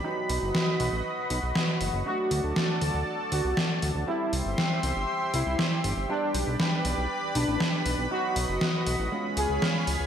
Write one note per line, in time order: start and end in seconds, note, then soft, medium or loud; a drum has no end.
0.00 2.02 B5 medium
0.04 2.03 F#3 medium
0.04 2.03 B3 medium
0.04 2.03 D#4 medium
0.04 4.04 F#4 medium
0.04 2.03 F#4 medium
0.04 2.04 B4 medium
0.04 2.04 D#5 medium
0.29 0.39 B1 medium
0.29 open hi-hat medium
0.42 0.52 F#1 medium
0.55 snare loud
0.80 0.89 B1 medium
0.80 open hi-hat medium
0.93 1.02 A1 medium
1.30 1.40 B1 medium
1.30 open hi-hat medium
1.43 1.52 B1 medium
1.55 snare loud
1.81 1.90 F#1 medium
1.81 open hi-hat medium
1.93 2.03 F#1 medium
2.06 4.05 F#3 medium
2.06 4.05 A3 medium
2.06 4.05 D4 medium
2.06 4.05 F#4 medium
2.06 2.31 F#4 loud
2.06 4.06 A4 medium
2.06 4.06 D5 medium
2.06 4.06 A5 medium
2.31 2.41 D2 medium
2.31 open hi-hat medium
2.44 2.53 D2 medium
2.56 snare loud
2.81 2.91 D2 medium
2.81 open hi-hat medium
2.94 3.04 D2 medium
3.32 3.42 D2 medium
3.32 3.57 F#4 medium
3.32 open hi-hat medium
3.44 3.54 C2 medium
3.57 snare loud
3.82 3.92 D2 medium
3.82 open hi-hat medium
3.95 4.05 D2 medium
4.07 6.06 G3 medium
4.07 6.06 C4 medium
4.07 6.06 E4 medium
4.07 4.32 E4 loud
4.07 6.06 G4 medium
4.07 8.07 G4 medium
4.07 6.07 C5 medium
4.07 6.07 E5 medium
4.07 6.07 C6 loud
4.33 4.42 C2 medium
4.33 open hi-hat medium
4.45 4.55 G1 medium
4.58 snare loud
4.83 4.93 C2 loud
4.83 open hi-hat medium
4.96 5.05 G1 medium
5.34 5.43 C2 medium
5.34 5.58 E4 medium
5.34 open hi-hat loud
5.46 5.56 C2 medium
5.59 snare loud
5.84 5.94 G1 medium
5.84 open hi-hat medium
5.97 6.06 G1 medium
6.09 8.08 G3 medium
6.09 8.08 B3 medium
6.09 8.08 D4 medium
6.09 6.34 D4 loud
6.09 8.08 G4 medium
6.09 9.09 B4 medium
6.09 8.09 D5 medium
6.09 9.09 B5 medium
6.34 6.44 B1 medium
6.34 open hi-hat loud
6.47 6.57 B1 medium
6.60 snare loud
6.85 6.94 B1 medium
6.85 open hi-hat medium
6.98 7.07 B1 medium
7.35 7.45 B1 medium
7.35 7.60 D4 medium
7.35 open hi-hat loud
7.48 7.57 A1 medium
7.60 snare loud
7.86 7.95 B1 medium
7.86 open hi-hat medium
7.98 8.08 B1 medium
8.11 9.09 F#3 medium
8.11 9.09 B3 medium
8.11 9.09 D#4 medium
8.11 8.36 F#4 loud
8.11 9.11 F#4 medium
8.11 9.09 F#4 medium
8.11 9.11 D#5 medium
8.36 8.46 B1 medium
8.36 open hi-hat loud
8.49 8.58 F#1 medium
8.61 snare loud
8.86 8.96 B1 medium
8.86 open hi-hat medium
8.99 9.09 A1 medium
9.12 10.07 G#3 medium
9.12 10.07 B3 medium
9.12 10.07 C#4 medium
9.12 10.07 F4 medium
9.12 10.07 G#4 medium
9.12 10.07 C#5 medium
9.12 10.07 F5 medium
9.12 10.07 B5 medium
9.37 9.47 C#2 medium
9.37 9.62 G#4 medium
9.37 open hi-hat loud
9.50 9.59 C#2 medium
9.62 snare loud
9.87 9.97 C#2 medium
9.87 open hi-hat medium
10.00 10.07 C#2 medium